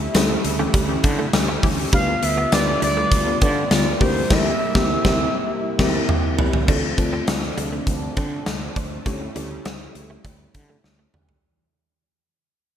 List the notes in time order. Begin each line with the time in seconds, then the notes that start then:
Already playing: C#3 G3 A3 C#4 E4 G4 A4 E5
0.14 D2 A3 C4 C#4 E4 G4 A4, snare, closed hi-hat, tambourine
0.30 muted clean electric guitar stroke
0.44 D2, closed hi-hat
0.59 E3 A3 C#4 G4
0.74 D2 G3, kick, closed hi-hat
0.89 E3 C#4 G4
1.04 D3, muted clean electric guitar stroke, kick, closed hi-hat
1.19 A3
1.33 D2 E3 C#4 G4, muted clean electric guitar stroke, snare, closed hi-hat, tambourine
1.48 A3
1.63 D2 E3 G3 C#4 G4, kick, open hi-hat
1.92 D2 D3 G3 B3 D4 F4 G4 B4 F5, kick, closed hi-hat
2.23 D2 E5, muted clean electric guitar stroke, closed hi-hat
2.37 B3
2.52 D2 B3 D4 F4 G4 B4 D5, muted clean electric guitar stroke, snare, closed hi-hat, tambourine
2.82 D2 G3 D5, closed hi-hat
2.97 D3 A3 B3 F4
3.12 D2, kick, closed hi-hat
3.27 D3 B3 F4
3.41 D3 B3 D5, kick, closed hi-hat
3.71 D2 D3 B3 F4 D5, snare, closed hi-hat, tambourine
4.00 D2 C3 E3 A#3 C4 D4 E4 G4 A#4 C5, kick, open hi-hat
4.30 D2 E3 A#3 C4 E4 G4 A#4 E5, kick, snare, crash
4.75 D2 E3 A#3 C4 G4 A#4, kick, snare
4.82 E4
5.04 D2 E3 A#3 C4 G4 A#4, kick, snare
5.11 E4
5.79 D2 E3 A#3 C4 G4 A#4, kick, snare, crash
5.86 E4
6.09 mid tom
6.39 floor tom
6.53 floor tom
6.68 D2 C3 F3 A3 C4 D4 F4 A4 C5, kick, crash
6.97 D2 C4 D4 F4 A4, muted clean electric guitar stroke, kick, closed hi-hat
7.13 C4
7.28 D2, muted clean electric guitar stroke, snare, closed hi-hat
7.57 D2 G3, closed hi-hat
7.73 A3
7.87 D2, kick, closed hi-hat
8.17 D3 C4, kick, closed hi-hat
8.46 D2 A4, snare, closed hi-hat
8.76 D2 D4 C5, kick, closed hi-hat
8.91 D5
9.05 D2 C#3 G3 A3 C#4 E4 G4 A4 C#5, kick, closed hi-hat
9.21 muted clean electric guitar stroke
9.35 D2 G3 C#4 E4 G4 A4, closed hi-hat
9.65 D2 C4, snare, closed hi-hat
9.80 muted clean electric guitar stroke
9.95 D2, closed hi-hat
10.10 A3
10.25 D2 G3, kick, closed hi-hat
10.54 D3, muted clean electric guitar stroke, kick, closed hi-hat
10.70 A3
10.84 D2, muted clean electric guitar stroke, snare
10.99 A3
11.14 D2 G3, mid tom
11.29 floor tom